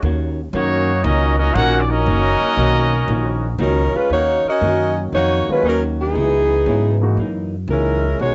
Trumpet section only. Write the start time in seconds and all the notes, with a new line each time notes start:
0.55 A#3 D#4 F#4 C#5
1.04 C#4 F#4 A#4 D#5
1.38 C#4 F#4 A#4 D#5
1.54 D#4 A#4 C#5 F#5
1.80 D5
1.89 C#4 F#4 A#4 D#5